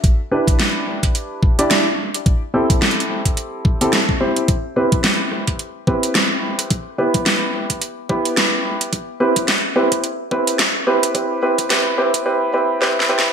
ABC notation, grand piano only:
X:1
M:4/4
L:1/16
Q:"Swing 16ths" 1/4=108
K:C
V:1 name="Grand piano"
z2 [DEGB]8- [DEGB] [DEGd]2 z3 | z2 [CEGA]8- [CEGA] [CEGA] z2 [CEGc]2 | z2 [CEGB]6 z2 [CEGB]6 | z2 [B,EGB]6 z2 [B,EGB]6 |
z2 [CEGB]2 z2 [CEGB]2 z2 [CEGB]2 z2 [CEGB]2 | [CEGB]2 [CEGB]2 [CEGB]2 [CEGB]2 [CEGB]2 [CEGB]2 [CEGB]2 [CEGB]2 |]